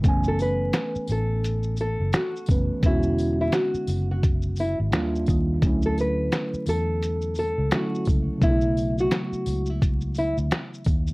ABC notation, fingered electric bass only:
X:1
M:4/4
L:1/16
Q:"Swing 16ths" 1/4=86
K:F#m
V:1 name="Fingered electric bass" clef=bass
F,,,4 z2 A,,,4- A,,, F,,, z2 F,,, z | E,,,4 z2 F,,,4- F,,, G,,, ^D,,2 D,,2 | D,,4 z2 E,,4- E,, C,, z2 C,, z | B,,,4 z2 C,,4- C,, D,, z2 ^D,,2 |]